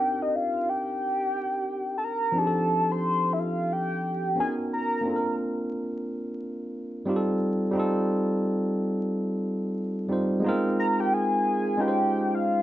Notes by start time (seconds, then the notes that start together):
Already playing: C4 D4 D#4 G4 A#4 G5
0.22 D#5
0.35 F5
0.69 G5
1.98 A5
2.04 A#5
2.32 F3 C4 D4
2.37 D#4 G4 G#4 A5
2.47 A4
2.92 C6
3.33 E5
3.39 F5
3.73 G5
4.36 B3 C#4 D4 F#4
4.40 A#4 G#5
4.44 D#4
4.73 A#5
5.01 A#3 C4
5.05 D4 F4
5.10 A4
5.16 A#4
7.06 G3 C4 D#4 F4
7.10 G4
7.16 A4
7.71 G3 C4
7.75 D#4 F4
7.79 A4
10.08 G3 C4 D#4 F4
10.13 C5
10.40 G#3 B3
10.44 D#4 F4
10.49 C4 A#4
10.79 A#5
11.00 G5
11.13 G#5
11.77 G#3 C#4 D#4 F4 G5
11.81 B4
11.88 C5
12.35 F5